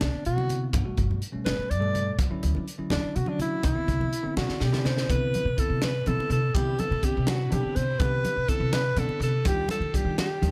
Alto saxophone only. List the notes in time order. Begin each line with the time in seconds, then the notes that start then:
0.01 D4
0.26 F#4
1.45 B4
1.70 D5
2.92 D4
3.16 F#4
3.29 D4
3.41 E4
3.65 E4
4.37 F#4
4.63 G4
4.86 C5
5.10 B4
5.59 A4
5.84 B4
6.07 A4
6.32 A4
6.55 G4
6.80 A4
7.05 G4
7.30 F#4
7.53 G4
7.76 C5
7.99 B4
8.49 A4
8.73 B4
8.99 A4
9.23 A4
9.47 G4
9.71 A4
9.96 G4
10.19 G4